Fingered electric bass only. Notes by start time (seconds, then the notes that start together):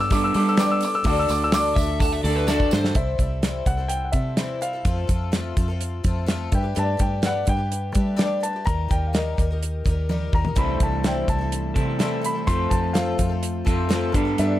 Already playing: G2
0.35 G3
1.04 D2
1.29 D2
1.76 D2
2.24 D2
2.73 G2
2.95 C2
3.19 C2
3.66 C2
4.14 C3
4.85 F2
5.09 F2
5.57 F2
6.04 F2
6.52 G2
6.77 G2
7.00 G2
7.47 G2
7.96 G3
8.67 D#2
8.91 D#2
9.38 D#2
9.86 D#2
10.33 D#2
10.57 C2
10.80 C2
11.28 C2
11.76 C3
12.47 F2
12.71 F2
13.18 F2
13.67 F2
14.14 G2
14.39 G2